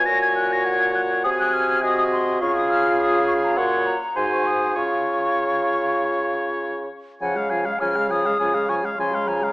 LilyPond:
<<
  \new Staff \with { instrumentName = "Flute" } { \time 4/4 \key des \major \tempo 4 = 101 bes'''16 aes'''16 ges'''16 bes'''16 aes'''8 ges'''8 ees'''16 ges'''16 f'''8 ees'''16 ees'''16 c'''8 | des'''16 ees'''16 f'''8 ees'''8 des'''16 bes''16 c'''8 bes''8 c'''16 des'''16 ees'''8 | des'''2.~ des'''8 r8 | ges''8 f''8 f'''8 ees'''4 des'''8 c'''8 bes''8 | }
  \new Staff \with { instrumentName = "Oboe" } { \time 4/4 \key des \major des''2 aes'4 aes'4 | aes'2 des''8 r8 c''4 | des''2.~ des''8 r8 | aes''16 f''16 aes''16 f''16 aes''16 f''16 aes''16 f''16 aes''16 f''16 aes''16 f''16 aes''16 f''16 aes''16 f''16 | }
  \new Staff \with { instrumentName = "Clarinet" } { \time 4/4 \key des \major aes''4 ges''4 aes''4 ees''4 | f''2 ges''8 r8 aes''4 | f''2.~ f''8 r8 | f'16 aes'16 f'16 aes'16 f'16 aes'16 f'16 aes'16 f'16 aes'16 f'16 aes'16 f'16 aes'16 f'16 aes'16 | }
  \new Staff \with { instrumentName = "French horn" } { \clef bass \time 4/4 \key des \major ges'2 ges'4 ges'4 | f'2 ges'8. r16 ges'4 | f'2.~ f'8 r8 | f16 aes16 f16 aes16 f16 aes16 f16 aes16 f16 aes16 f16 aes16 f16 aes16 f16 aes16 | }
  \new Staff \with { instrumentName = "Bassoon" } { \clef bass \time 4/4 \key des \major bes,2 c2 | des2 bes,8 r8 aes,4 | des2.~ des8 r8 | des4 des4 des4 des4 | }
>>